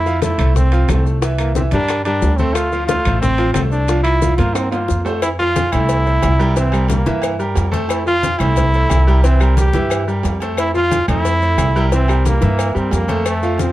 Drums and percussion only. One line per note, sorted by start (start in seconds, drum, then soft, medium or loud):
0.06 high bongo soft
0.06 high conga soft
0.06 maracas soft
0.22 high bongo medium
0.22 high conga medium
0.22 high timbale medium
0.22 low timbale medium
0.22 maracas medium
0.38 high conga soft
0.38 low conga medium
0.38 high timbale loud
0.38 claves medium
0.38 maracas soft
0.55 high bongo medium
0.55 high conga soft
0.55 low conga medium
0.55 maracas medium
0.71 high bongo soft
0.71 high conga soft
0.71 high timbale medium
0.71 maracas soft
0.88 high bongo soft
0.88 low bongo medium
0.88 high conga medium
0.88 high timbale medium
0.88 low timbale medium
0.88 claves medium
0.88 maracas medium
1.06 high bongo soft
1.06 maracas soft
1.22 high bongo medium
1.22 high conga soft
1.22 high timbale medium
1.22 maracas medium
1.38 high bongo soft
1.38 high conga soft
1.38 high timbale medium
1.38 claves medium
1.38 maracas soft
1.55 high bongo medium
1.55 high conga medium
1.55 low timbale medium
1.55 maracas medium
1.71 high conga medium
1.71 high timbale medium
1.71 maracas soft
1.89 high bongo medium
1.89 high conga soft
1.89 high timbale loud
1.89 claves medium
1.89 maracas medium
2.05 high bongo soft
2.05 high conga soft
2.05 high timbale medium
2.05 maracas soft
2.22 high bongo soft
2.22 low bongo medium
2.22 high conga soft
2.22 low timbale medium
2.22 maracas medium
2.38 high bongo soft
2.38 high conga medium
2.38 maracas soft
2.55 high bongo medium
2.55 high conga soft
2.55 high timbale medium
2.55 claves medium
2.55 maracas medium
2.72 high bongo soft
2.72 high conga soft
2.72 maracas soft
2.89 high bongo medium
2.89 high conga medium
2.89 high timbale medium
2.89 low timbale medium
2.89 maracas medium
3.05 high conga soft
3.05 low conga medium
3.05 high timbale medium
3.05 claves medium
3.05 maracas soft
3.23 high bongo medium
3.23 high conga soft
3.23 low conga medium
3.23 maracas medium
3.38 high bongo soft
3.38 high conga soft
3.38 high timbale medium
3.38 maracas soft
3.54 high bongo soft
3.54 low bongo medium
3.54 high conga medium
3.54 high timbale medium
3.54 low timbale medium
3.54 claves medium
3.54 maracas medium
3.72 high bongo soft
3.72 high conga soft
3.72 maracas soft
3.88 high bongo medium
3.88 high conga soft
3.88 high timbale medium
3.88 maracas medium
4.05 high bongo soft
4.05 high conga soft
4.05 high timbale medium
4.05 claves medium
4.05 maracas soft
4.22 high bongo medium
4.22 high conga medium
4.22 low timbale medium
4.22 maracas medium
4.38 high conga medium
4.38 high timbale medium
4.38 maracas soft
4.55 high bongo medium
4.55 high conga soft
4.55 high timbale medium
4.55 claves medium
4.55 maracas medium
4.72 high bongo soft
4.72 high conga soft
4.72 high timbale medium
4.72 maracas soft
4.88 high bongo soft
4.88 low bongo medium
4.88 high conga soft
4.88 maracas medium
5.06 high bongo soft
5.06 low timbale medium
5.06 maracas soft
5.22 cowbell loud
5.22 high conga soft
5.22 low agogo loud
5.22 claves medium
5.22 maracas medium
5.40 high conga soft
5.40 maracas soft
5.56 cowbell medium
5.56 high conga loud
5.56 low timbale medium
5.56 low agogo medium
5.56 maracas medium
5.72 cowbell medium
5.72 high conga soft
5.72 low conga medium
5.72 low agogo loud
5.72 claves medium
5.72 maracas soft
5.89 cowbell loud
5.89 low agogo medium
5.89 maracas medium
6.07 high conga soft
6.07 maracas soft
6.22 cowbell medium
6.22 high conga medium
6.22 low timbale medium
6.22 low agogo loud
6.22 claves medium
6.22 maracas medium
6.40 high conga soft
6.40 maracas soft
6.56 cowbell loud
6.56 low agogo medium
6.56 maracas medium
6.72 high conga soft
6.72 low agogo loud
6.72 claves medium
6.72 maracas soft
6.88 cowbell medium
6.88 high conga loud
6.88 low timbale medium
6.88 low agogo medium
6.88 maracas medium
7.06 cowbell medium
7.06 high conga medium
7.06 maracas soft
7.22 cowbell loud
7.22 high conga soft
7.22 low agogo loud
7.22 claves medium
7.22 maracas medium
7.40 high conga soft
7.40 maracas soft
7.55 cowbell medium
7.55 high conga soft
7.55 low timbale medium
7.55 low agogo medium
7.55 maracas medium
7.73 cowbell medium
7.73 high conga medium
7.73 low agogo medium
7.73 maracas soft
7.89 cowbell loud
7.89 high conga soft
7.89 low agogo loud
7.89 claves medium
7.89 maracas medium
8.07 high conga soft
8.07 maracas soft
8.23 cowbell medium
8.23 high conga loud
8.23 low timbale medium
8.23 low agogo medium
8.23 maracas medium
8.39 cowbell medium
8.39 high conga soft
8.39 low conga medium
8.39 low agogo loud
8.39 claves medium
8.39 maracas soft
8.56 cowbell loud
8.56 high conga soft
8.56 low conga medium
8.56 low agogo medium
8.56 maracas medium
8.74 maracas soft
8.90 cowbell medium
8.90 high conga medium
8.90 low timbale medium
8.90 low agogo loud
8.90 claves medium
8.90 maracas medium
9.08 maracas soft
9.23 cowbell loud
9.23 low agogo medium
9.23 maracas medium
9.40 high conga soft
9.40 low agogo loud
9.40 claves medium
9.40 maracas soft
9.57 cowbell medium
9.57 high conga loud
9.57 low timbale medium
9.57 low agogo medium
9.57 maracas medium
9.73 cowbell medium
9.73 high conga loud
9.73 maracas soft
9.90 cowbell loud
9.90 high conga soft
9.90 low agogo loud
9.90 claves medium
9.90 maracas medium
10.07 high conga soft
10.07 maracas soft
10.23 cowbell medium
10.23 high conga soft
10.23 low timbale medium
10.23 low agogo medium
10.23 maracas medium
10.40 cowbell medium
10.40 low agogo medium
10.40 maracas soft
10.57 cowbell loud
10.57 high conga soft
10.57 low agogo medium
10.57 claves medium
10.57 maracas medium
10.75 high conga soft
10.75 maracas soft
10.91 cowbell medium
10.91 high conga medium
10.91 low timbale medium
10.91 low agogo medium
10.91 maracas medium
11.08 cowbell medium
11.08 high conga soft
11.08 low conga medium
11.08 low agogo loud
11.08 claves medium
11.08 maracas soft
11.25 cowbell loud
11.25 high conga soft
11.25 low agogo medium
11.25 maracas medium
11.42 high conga soft
11.42 maracas soft
11.58 cowbell medium
11.58 high conga medium
11.58 low timbale medium
11.58 low agogo loud
11.58 claves medium
11.58 maracas medium
11.76 maracas soft
11.92 cowbell loud
11.92 high conga soft
11.92 low agogo medium
11.92 maracas medium
12.08 high conga soft
12.08 low agogo loud
12.08 claves medium
12.08 maracas soft
12.25 cowbell medium
12.25 high conga loud
12.25 low timbale medium
12.25 low agogo medium
12.25 maracas medium
12.42 cowbell medium
12.42 high conga medium
12.42 maracas soft
12.59 cowbell loud
12.59 high conga soft
12.59 low agogo loud
12.59 claves medium
12.59 maracas medium
12.76 high conga soft
12.76 maracas soft
12.91 cowbell medium
12.91 high conga soft
12.91 low timbale medium
12.91 low agogo medium
12.91 maracas medium
13.08 cowbell medium
13.08 high conga medium
13.08 low agogo medium
13.08 maracas soft
13.25 cowbell loud
13.25 high conga soft
13.25 low agogo loud
13.25 claves medium
13.25 maracas medium
13.42 high conga soft
13.42 maracas soft
13.58 cowbell medium
13.58 high conga loud
13.58 low timbale medium
13.58 low agogo medium
13.58 maracas medium